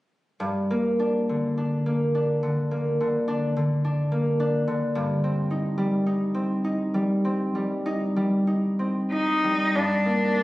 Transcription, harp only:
0, 0, Header, 1, 2, 480
1, 0, Start_track
1, 0, Key_signature, -2, "minor"
1, 0, Tempo, 1165049
1, 165, Time_signature, 4, 2, 24, 8
1, 1120, Tempo, 1119403
1, 2560, Tempo, 1181102
1, 3040, Tempo, 1242236
1, 4266, End_track
2, 0, Start_track
2, 0, Title_t, "Harp"
2, 0, Program_c, 0, 46
2, 164, Note_on_c, 0, 43, 29
2, 291, Note_on_c, 0, 58, 21
2, 410, Note_on_c, 0, 62, 25
2, 533, Note_on_c, 0, 50, 23
2, 644, Note_off_c, 0, 62, 0
2, 649, Note_on_c, 0, 62, 24
2, 761, Note_off_c, 0, 58, 0
2, 766, Note_on_c, 0, 58, 26
2, 879, Note_off_c, 0, 62, 0
2, 884, Note_on_c, 0, 62, 25
2, 995, Note_off_c, 0, 50, 0
2, 1000, Note_on_c, 0, 50, 25
2, 1113, Note_off_c, 0, 58, 0
2, 1118, Note_on_c, 0, 58, 27
2, 1238, Note_off_c, 0, 50, 0
2, 1243, Note_on_c, 0, 50, 25
2, 1354, Note_off_c, 0, 62, 0
2, 1360, Note_on_c, 0, 62, 34
2, 1478, Note_off_c, 0, 50, 0
2, 1483, Note_on_c, 0, 50, 26
2, 1598, Note_off_c, 0, 62, 0
2, 1603, Note_on_c, 0, 62, 29
2, 1715, Note_off_c, 0, 58, 0
2, 1720, Note_on_c, 0, 58, 30
2, 1798, Note_off_c, 0, 43, 0
2, 1835, Note_off_c, 0, 62, 0
2, 1840, Note_on_c, 0, 62, 32
2, 1954, Note_off_c, 0, 50, 0
2, 1959, Note_on_c, 0, 50, 32
2, 2078, Note_on_c, 0, 43, 41
2, 2098, Note_off_c, 0, 58, 0
2, 2099, Note_off_c, 0, 50, 0
2, 2099, Note_off_c, 0, 62, 0
2, 2200, Note_on_c, 0, 60, 30
2, 2315, Note_on_c, 0, 63, 32
2, 2431, Note_on_c, 0, 55, 31
2, 2550, Note_off_c, 0, 63, 0
2, 2555, Note_on_c, 0, 63, 32
2, 2664, Note_off_c, 0, 60, 0
2, 2669, Note_on_c, 0, 60, 31
2, 2785, Note_off_c, 0, 63, 0
2, 2790, Note_on_c, 0, 63, 32
2, 2907, Note_off_c, 0, 55, 0
2, 2911, Note_on_c, 0, 55, 28
2, 3031, Note_off_c, 0, 60, 0
2, 3035, Note_on_c, 0, 60, 33
2, 3148, Note_off_c, 0, 55, 0
2, 3153, Note_on_c, 0, 55, 25
2, 3267, Note_off_c, 0, 63, 0
2, 3271, Note_on_c, 0, 63, 37
2, 3386, Note_off_c, 0, 55, 0
2, 3390, Note_on_c, 0, 55, 27
2, 3505, Note_off_c, 0, 63, 0
2, 3509, Note_on_c, 0, 63, 30
2, 3628, Note_off_c, 0, 60, 0
2, 3633, Note_on_c, 0, 60, 25
2, 3656, Note_off_c, 0, 43, 0
2, 3755, Note_off_c, 0, 63, 0
2, 3760, Note_on_c, 0, 63, 27
2, 3878, Note_off_c, 0, 55, 0
2, 3882, Note_on_c, 0, 55, 25
2, 4004, Note_on_c, 0, 43, 29
2, 4022, Note_off_c, 0, 60, 0
2, 4024, Note_off_c, 0, 63, 0
2, 4120, Note_on_c, 0, 58, 21
2, 4238, Note_on_c, 0, 62, 26
2, 4266, Note_off_c, 0, 43, 0
2, 4266, Note_off_c, 0, 55, 0
2, 4266, Note_off_c, 0, 58, 0
2, 4266, Note_off_c, 0, 62, 0
2, 4266, End_track
0, 0, End_of_file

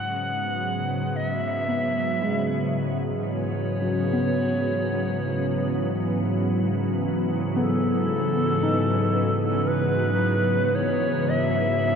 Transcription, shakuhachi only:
0, 0, Header, 1, 2, 480
1, 0, Start_track
1, 0, Tempo, 1071429
1, 1473, Time_signature, 4, 2, 24, 8
1, 5355, End_track
2, 0, Start_track
2, 0, Title_t, "Shakuhachi"
2, 0, Program_c, 0, 77
2, 0, Note_on_c, 0, 78, 119
2, 521, Note_on_c, 0, 75, 109
2, 527, Note_off_c, 0, 78, 0
2, 592, Note_off_c, 0, 75, 0
2, 592, Note_on_c, 0, 76, 109
2, 1356, Note_off_c, 0, 76, 0
2, 1473, Note_on_c, 0, 75, 88
2, 1488, Note_on_c, 0, 73, 96
2, 1493, Note_off_c, 0, 75, 0
2, 2895, Note_off_c, 0, 73, 0
2, 3391, Note_on_c, 0, 69, 94
2, 4335, Note_on_c, 0, 71, 100
2, 4341, Note_off_c, 0, 69, 0
2, 4816, Note_on_c, 0, 73, 102
2, 4823, Note_off_c, 0, 71, 0
2, 5061, Note_on_c, 0, 76, 106
2, 5068, Note_off_c, 0, 73, 0
2, 5355, Note_off_c, 0, 76, 0
2, 5355, End_track
0, 0, End_of_file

